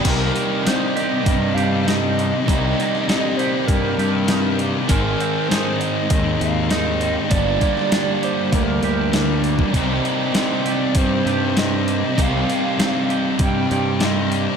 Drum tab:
CC |x---------------|----------------|----------------|----------------|
HH |o-o-o-o-o-o-o-o-|o-o-o-o-o-o-o-o-|o-o-o-o-o-o-o-o-|o-o-o-o-o-o-o-o-|
SD |----o-------o---|---oo-------o---|----o-------o---|---oo-------o---|
BD |o-------o-------|o-------o-------|o-------o-------|o-o-----o------o|

CC |----------------|----------------|
HH |o-o-o-o-o-o-o-o-|o-o-o-o-o-o-o-o-|
SD |----o-------o---|----o-------o---|
BD |o-------o-------|o-------o-------|